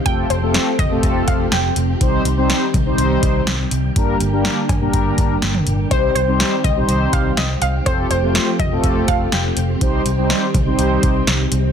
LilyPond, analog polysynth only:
\new Staff \with { instrumentName = "Analog polysynth" } { \time 4/4 \key c \dorian \tempo 4 = 123 <a c' f' g' a'>8 r16 <a c' f' g' a'>8 r8 <a c' f' g' a'>4 r4 r16 | <g c' ees' g' c''>8 r16 <g c' ees' g' c''>8 r8 <g c' ees' g' c''>4 r4 r16 | <g bes d' g' bes'>8 r16 <g bes d' g' bes'>8 r8 <g bes d' g' bes'>4 r4 r16 | <g c' ees' g' c''>8 r16 <g c' ees' g' c''>8 r8 <g c' ees' g' c''>4 r4 r16 |
<a c' f' g' a'>8 r16 <a c' f' g' c''>8 r8 <a c' f' g' a'>4 r4 r16 | <g c' ees' g' c''>8 r16 <g c' ees' g' c''>8 r8 <g c' ees' g' c''>4 r4 r16 | }